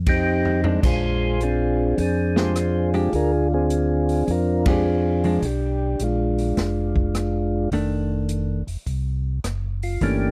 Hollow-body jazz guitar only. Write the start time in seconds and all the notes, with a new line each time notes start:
0.65 G#3 D4
2.36 G#3 D4 G4
2.94 G#3 D4 G4
4.67 G#3 D4 G4
5.24 F3 G#3 D4
7.73 D#3 A3 D4
10.02 E3 A3 C#4